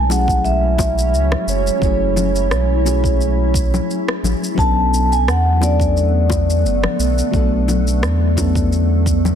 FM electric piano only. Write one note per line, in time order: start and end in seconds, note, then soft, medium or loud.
0.00 0.09 F#3 medium
0.00 4.60 G#3 loud
0.00 0.09 A3 medium
0.00 0.10 C#4 medium
0.00 0.10 E4 medium
0.09 0.27 F#3 medium
0.09 0.27 A3 medium
0.09 0.28 C#4 medium
0.09 0.28 E4 medium
0.09 0.28 G#4 medium
1.79 2.80 F#3 medium
1.79 2.81 A3 medium
1.79 2.82 C#4 medium
1.83 2.82 E4 medium
1.83 2.83 G#4 medium
2.84 3.03 F#3 medium
2.84 3.03 A3 medium
2.84 3.03 C#4 medium
2.84 3.04 E4 medium
2.84 3.04 G#4 medium
4.55 5.56 F#3 medium
4.55 5.57 B3 medium
4.55 5.57 C#4 medium
4.55 5.58 D4 medium
4.59 5.58 A4 loud
5.60 5.78 F#3 medium
5.60 5.79 B3 medium
5.60 5.79 C#4 medium
5.60 5.79 D4 medium
5.60 5.80 A4 medium
7.31 8.32 F#3 medium
7.31 8.33 A3 medium
7.31 8.33 B3 medium
7.31 8.34 D4 medium
7.36 8.35 A4 loud
8.36 8.54 F#3 medium
8.36 8.55 B3 medium
8.36 8.55 C#4 medium
8.36 8.55 D4 medium
8.36 8.56 A4 medium